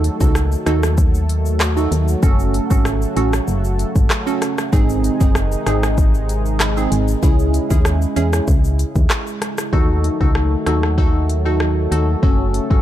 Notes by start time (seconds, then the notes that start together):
Already playing: D#3 F#3 A3 D#4 F#4 A4
0.04 closed hi-hat, shaker
0.20 C#2 D#4 F#4 A4, kick, shaker
0.35 cross-stick, shaker
0.52 shaker
0.66 D#2 D#4 F#4 A4, cross-stick, closed hi-hat, shaker
0.83 cross-stick, shaker
0.98 kick, shaker
1.14 shaker
1.29 closed hi-hat, shaker
1.46 shaker
1.60 cross-stick, clap, shaker
1.77 D#4 F#4 A4, shaker
1.92 D#2, closed hi-hat, shaker
2.08 shaker
2.23 F#1 C#3 C#4 F#4 A4, kick, shaker
2.39 shaker
2.54 closed hi-hat, shaker
2.70 G#1 C#4 F#4 A4, kick, shaker
2.85 cross-stick, shaker
3.02 shaker
3.16 A1 C#4 F#4 A4, closed hi-hat, shaker
3.33 cross-stick, shaker
3.48 F#1, shaker
3.64 shaker
3.79 closed hi-hat, shaker
3.96 G#1, kick, shaker
4.10 cross-stick, clap, shaker
4.27 C#4 F#4 A4, shaker
4.42 cross-stick, closed hi-hat, shaker
4.58 cross-stick, shaker
4.72 G#1 C3 D#3 G#3 C4 D#4 G#4, kick, shaker
4.89 shaker
5.04 closed hi-hat, shaker
5.20 F#1 C4 D#4 G#4, kick, shaker
5.35 cross-stick, shaker
5.52 shaker
5.66 G#1 C4 D#4 G#4, cross-stick, closed hi-hat, shaker
5.83 cross-stick, shaker
5.98 kick, shaker
6.14 shaker
6.29 closed hi-hat, shaker
6.46 shaker
6.60 cross-stick, clap, shaker
6.77 C4 D#4 G#4, shaker
6.92 G#1, closed hi-hat, shaker
7.08 shaker
7.23 C#2 C#3 C#4 E4 G#4, kick, shaker
7.39 shaker
7.54 closed hi-hat, shaker
7.70 D#2 C#4 E4 G#4, kick, shaker
7.85 cross-stick, shaker
8.02 shaker
8.16 E2 C#4 E4 G#4, closed hi-hat, shaker
8.33 cross-stick, shaker
8.48 C#2, kick, shaker
8.64 shaker
8.79 closed hi-hat, shaker
8.95 D#2, kick, shaker
9.10 cross-stick, clap, shaker
9.27 shaker
9.42 cross-stick, closed hi-hat, shaker
9.58 cross-stick, shaker
9.73 D#2 D#3 F#3 A3 D#4 F#4 A4, kick
10.04 closed hi-hat
10.20 C#2 D#4 F#4 A4, kick
10.35 cross-stick
10.66 D#2 D#4 F#4 A4, cross-stick, closed hi-hat
10.83 cross-stick
10.98 D#4 F#4 A4, kick
11.29 closed hi-hat
11.45 D#4 F#4 A4
11.60 cross-stick
11.91 D#2 D#4 F#4 A4, closed hi-hat
12.23 F#1 C#3 A3 C#4 F#4 A4, kick
12.54 closed hi-hat
12.70 G#1 C#4 F#4 A4, kick